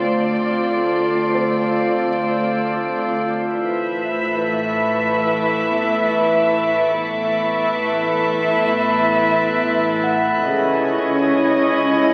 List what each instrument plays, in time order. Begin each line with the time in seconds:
Already playing: grand piano E5
0.01 cello section D2, double bass section D2, viola section C4 F4, synth texture F4 A4 C5, violin section D5
1.33 grand piano C4 C5
3.48 double bass section A1, cello section A2, viola section E4 B4, synth texture A4 E5 B5, violin section E5 B5
4.37 violin section C#6
5.23 violin section D6
5.69 grand piano B3 B4
6.97 double bass section A1, cello section A2, viola section B3 E4, synth texture A4 B4 E5, violin section E5
8.58 violin section C6
10.04 grand piano F#5
10.46 double bass section C#2, cello section C#3, viola section C#4 E4, synth texture E4 C#5 D#5, grand piano G#4, violin section D#5 C#6 G#6